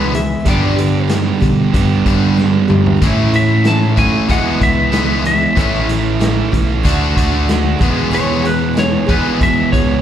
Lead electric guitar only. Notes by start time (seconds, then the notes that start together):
Already playing: B4
0.15 E5
0.50 D5
3.36 E5
3.67 A5
3.99 G#5
4.31 F#5
4.63 E5
5.27 E5
8.15 C#5
8.46 B4
8.79 C#5
9.10 B4
9.43 E5
9.72 C#5